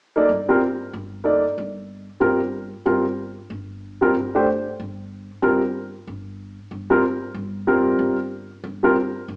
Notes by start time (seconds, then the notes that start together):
0.16 A#3 D#4 A4 D5
0.29 G1
0.49 G3 C4 F4 A#4
0.93 G1
1.24 A#3 D#4 A4 D5
1.58 G1
2.20 G1 G3 C4 F4 A#4
2.86 G1 G3 C4 F4 A#4
3.50 G1
4.01 G3 C4 F4 A#4
4.15 G1
4.35 A3 D4 G4 C5
4.80 G1
5.42 G1 G3 C4 F4 A#4
6.07 G1
6.71 G1
6.90 G3 C4 F4 A#4
7.34 G1
7.67 G3 C4 F4 A#4
7.99 G1
8.64 G1
8.83 G3 C4 F4 A#4
9.28 G1